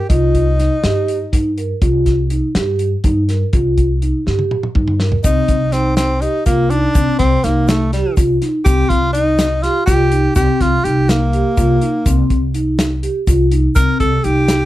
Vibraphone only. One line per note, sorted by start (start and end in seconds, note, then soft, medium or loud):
0.10 0.41 F4 medium
0.59 0.75 D#4 medium
0.84 1.15 G4 medium
1.32 1.48 D#4 medium
1.58 1.73 A#4 medium
1.82 2.13 F4 medium
2.31 2.46 D#4 medium
2.56 2.87 G4 medium
3.04 3.20 D#4 medium
3.28 3.44 A#4 medium
3.53 3.84 F4 medium
4.02 4.18 D#4 medium
4.26 4.57 G4 medium
4.75 4.91 D#4 medium
5.00 5.16 A#4 medium
5.25 5.56 C4 medium
5.73 6.04 D#4 medium
6.22 6.37 G4 medium
6.46 6.62 F4 medium
6.70 6.86 D#4 medium
6.95 7.26 C4 medium
7.44 7.75 D#4 medium
7.93 8.08 G4 medium
8.17 8.32 F4 medium
8.41 8.57 D#4 medium
8.65 8.96 C4 medium
9.14 9.46 D#4 medium
9.63 9.79 G4 medium
9.87 10.03 F4 medium
10.12 10.27 D#4 medium
10.36 10.67 C4 medium
10.85 11.16 D#4 medium
11.34 11.49 G4 medium
11.58 11.73 F4 medium
11.82 11.97 D#4 medium
12.06 12.37 C4 medium
12.54 12.85 D#4 medium
13.03 13.18 G4 medium
13.27 13.43 F4 medium
13.51 13.67 D#4 medium
13.75 14.06 C4 medium
14.24 14.55 D#4 medium